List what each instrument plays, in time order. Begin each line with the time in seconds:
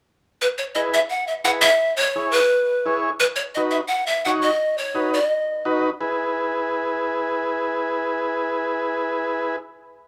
0.41 pan flute B4
0.58 pan flute C#5
0.75 transistor combo organ E4 G#4 B4, pan flute D#5
0.94 pan flute E5
1.10 pan flute F#5
1.27 pan flute E5
1.44 transistor combo organ E4 G#4 B4, pan flute F#5
1.61 pan flute E5
1.96 pan flute C#5
2.16 transistor combo organ E4 G#4 C#5
2.31 pan flute B4
2.86 transistor combo organ E4 G#4 C#5
3.20 pan flute B4
3.36 pan flute C#5
3.55 transistor combo organ D#4 F#4 B4, pan flute D#5
3.71 pan flute E5
3.88 pan flute F#5
4.06 pan flute E5
4.25 transistor combo organ D#4 F#4 C#5, pan flute F#5
4.42 pan flute D#5
4.78 pan flute C#5
4.94 transistor combo organ D#4 F#4 B4
5.13 pan flute D5
5.26 pan flute D#5
5.65 transistor combo organ D#4 F#4 B4
6.01 transistor combo organ E4 G#4 B4